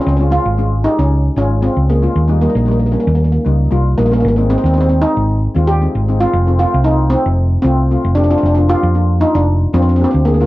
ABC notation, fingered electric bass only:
X:1
M:4/4
L:1/16
Q:1/4=115
K:Ab
V:1 name="Fingered electric bass" clef=bass
D,,3 A,,,4 D,,3 A,,,3 D,,3 | E,,3 B,,,4 E,,3 D,,2 C,,2 B,,,2 | A,,,3 E,,4 A,,,3 E,,3 A,,,3 | F,,,3 C,,4 F,,,3 C,,3 F,,,3 |
F,,,3 F,,4 F,,,3 F,,3 =D,,3 |]